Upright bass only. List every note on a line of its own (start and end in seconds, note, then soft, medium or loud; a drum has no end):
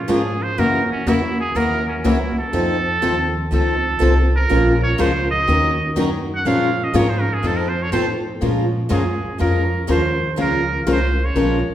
0.09 0.57 G#2 medium
0.58 0.88 F#2 medium
0.90 muted upright bass stroke soft
1.06 1.54 E2 medium
1.55 2.03 D#2 medium
2.05 2.35 C#2 medium
2.37 muted upright bass stroke soft
2.53 3.01 F2 medium
3.03 3.51 D#2 medium
3.52 3.99 C#2 medium
4.01 4.49 C2 medium
4.51 4.98 A#1 medium
5.00 5.47 C#2 loud
5.48 5.95 D#2 medium
5.97 6.44 F#2 medium
6.45 6.93 A#2 medium
6.94 7.42 G#2 loud
7.43 7.91 F2 medium
7.93 8.40 A2 medium
8.42 8.90 A#2 medium
8.91 9.20 F#2 medium
9.23 muted upright bass stroke soft
9.41 9.88 F2 medium
9.89 10.36 D#2 medium
10.39 10.86 C#2 medium
10.87 11.34 C2 medium
11.36 11.65 A#1 medium
11.68 muted upright bass stroke soft